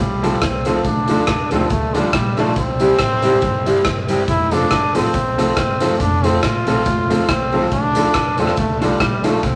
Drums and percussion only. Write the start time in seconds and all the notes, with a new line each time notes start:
0.24 closed hi-hat
0.42 kick, cross-stick, closed hi-hat
0.65 closed hi-hat
0.84 kick, closed hi-hat
1.08 closed hi-hat
1.27 kick, cross-stick, closed hi-hat
1.51 closed hi-hat
1.70 kick, closed hi-hat
1.94 closed hi-hat
2.13 kick, cross-stick, closed hi-hat
2.37 cross-stick, open hi-hat
2.56 kick, closed hi-hat
2.80 closed hi-hat
2.99 kick, cross-stick, closed hi-hat
3.22 closed hi-hat
3.41 kick, closed hi-hat
3.66 closed hi-hat
3.85 kick, cross-stick, closed hi-hat
4.08 closed hi-hat
4.28 kick, closed hi-hat
4.51 closed hi-hat
4.71 kick, cross-stick, closed hi-hat
4.95 closed hi-hat
5.13 kick, closed hi-hat
5.39 closed hi-hat
5.57 kick, cross-stick, closed hi-hat
5.80 closed hi-hat
6.00 kick, closed hi-hat
6.24 closed hi-hat
6.43 kick, cross-stick, closed hi-hat
6.67 closed hi-hat
6.85 kick, closed hi-hat
7.10 closed hi-hat
7.29 kick, cross-stick, closed hi-hat
7.52 open hi-hat
7.72 kick, closed hi-hat
7.95 closed hi-hat
8.14 kick, cross-stick, closed hi-hat
8.38 closed hi-hat
8.47 cross-stick
8.57 kick, closed hi-hat
8.82 closed hi-hat
9.00 kick, cross-stick, closed hi-hat
9.24 closed hi-hat
9.43 kick, closed hi-hat